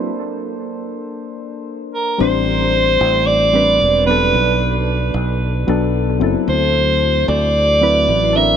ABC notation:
X:1
M:4/4
L:1/8
Q:"Swing 16ths" 1/4=112
K:Ador
V:1 name="Soprano saxophone"
z6 z _B | c4 d3 B- | B2 z6 | c3 d4 e |]
V:2 name="Synth keys"
[_B,DAc]4- [B,DAc] z3 | [G,CDc]3 z2 [G,CDB]2 [F,B,DA]- | [F,B,DA]4- [F,B,DA] [F,B,DA]2 [F,CEA]- | [F,CEA]4- [F,CEA] [F,CEB]2 [CDA_B] |]
V:3 name="Fingered electric bass" clef=bass
z8 | A,,,3 A,,,3 E,,,2 | B,,,3 B,,,2 B,,,2 F,,, | D,,3 D,,3 A,,,2 |]